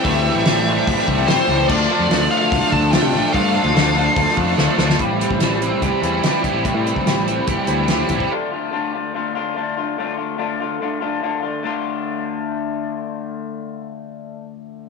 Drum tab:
CC |----------------|x---------------|----------------|----------------|
HH |o---o---o---o---|----o---o---o---|o---o---o-------|x-x-x-x-x-x-x-x-|
SD |----o-------o---|----o-------o---|----o-------o-oo|----o-------o---|
BD |o-------o-o-----|o-------o-o-----|o-------o-o-----|o--o----o-----o-|

CC |----------------|----------------|----------------|----------------|
HH |x-x-x-x-x-x-x-x-|----------------|----------------|----------------|
SD |----o-------o---|----------------|----------------|----------------|
BD |o--o----o-----oo|----------------|----------------|----------------|

CC |----------------|
HH |----------------|
SD |----------------|
BD |----------------|